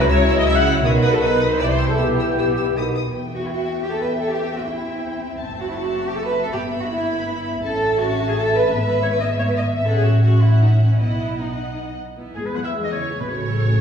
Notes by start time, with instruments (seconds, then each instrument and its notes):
Already playing: bassoon E3, clarinet F#4, oboe A#5
0.01 viola section B4
0.09 double bass section C#2, cello section C#3, french horn section F#3 E4, violin section E4 E6, viola section C#5, flute section C#5
0.29 violin section E6
0.36 flute section D#5, viola section D#5
0.44 double bass section C#2, cello section C#3, french horn section F#3 E4, flute section E5, viola section E5, violin section E6
0.56 viola section F#5, flute section F#5
0.66 violin section E6
0.74 flute section C#5, viola section C#5
0.83 double bass section B1, cello section B2, bassoon D#3, french horn section F#3 D#4, violin section F#4 D#6, oboe B5
1.02 viola section B4, flute section B4, violin section D#6
1.12 flute section A4, viola section A4
1.20 double bass section B1, cello section B2, french horn section F#3 D#4, violin section D#4 D#6, flute section B4, viola section B4
1.40 violin section D#6
1.49 flute section C5, viola section C5
1.57 double bass section C2, cello section C3, bassoon E3, french horn section G3 E4, violin section E4 E6, clarinet G4, flute section D5, viola section D5, oboe G5
1.68 flute section C5, viola section C5
1.78 violin section E6
1.87 flute section A4, viola section A4
1.96 double bass section B1, cello section B2, french horn section G3 E4, violin section B3 E6, flute section G4, viola section G4
2.20 violin section E6
2.37 double bass section B1, cello section B2, violin section E6
2.58 violin section E6
2.74 double bass section B1, cello section B2, bassoon D#3, french horn section F#3 D#4, clarinet F#4, oboe B5, violin section D#6
2.96 violin section D#6
3.15 double bass section E2, viola section B3, violin section E5 G5
3.34 cello section F#4
3.44 cello section E4
3.54 cello section F#4
3.82 cello section G4
3.91 cello section A4
4.01 cello section B4
4.19 cello section A4
4.28 viola section C4, cello section G4
4.57 cello section F#4
4.66 cello section E4
5.40 double bass section F#1, violin section E5 A5
5.60 cello section F#4
5.69 cello section E4
5.78 cello section F#4
6.07 cello section G4
6.16 cello section A4
6.26 cello section B4
6.43 cello section A4
6.52 double bass section G1, viola section B3, cello section G4, violin section B5
6.80 cello section F#4
6.89 cello section E4
7.63 double bass section A1, viola section C#4, cello section A4, violin section E5 A5
8.01 cello section F#4
8.29 cello section G#4
8.38 cello section A4
8.57 cello section B4
8.74 double bass section G#1, viola section B3, violin section E5
8.84 cello section B4
9.03 cello section C#5
9.11 cello section B4
9.20 cello section D#5
9.40 cello section C#5
9.48 cello section B4
9.57 cello section D#5
9.77 cello section E5
9.85 double bass section A1, viola section C#4, cello section A4, violin section E5 F#5
9.95 cello section G#4
10.04 cello section F#4
10.22 viola section C#4, cello section F#4, violin section E5 F#5
10.42 cello section E4
10.61 cello section D#4
10.90 cello section C#4
10.99 double bass section B1, viola section B3, cello section E4, violin section D#5 F#5
11.38 viola section B3, cello section D#4, violin section D#5 F#5
12.16 double bass section E2, viola section B3 E4
12.35 cello section G#2, viola section G#3 G#4, violin section G#4, oboe G#4
12.44 cello section B2, violin section B4, oboe B4
12.53 cello section F#3, viola section B3 E4, violin section F#5, oboe F#5
12.63 cello section E3, violin section E5, oboe E5
12.73 viola section G#3 G#4
12.82 cello section D#3, violin section D#5, oboe D#5
12.91 cello section C#3, viola section B3 E4, violin section C#5, oboe C#5
13.10 viola section G#3 G#4
13.19 cello section B2, violin section B4, oboe B4
13.28 double bass section A1, cello section C#3, viola section A3 F#4, violin section C#5, oboe C#5
13.49 viola section F#3 A4
13.67 viola section A3 F#4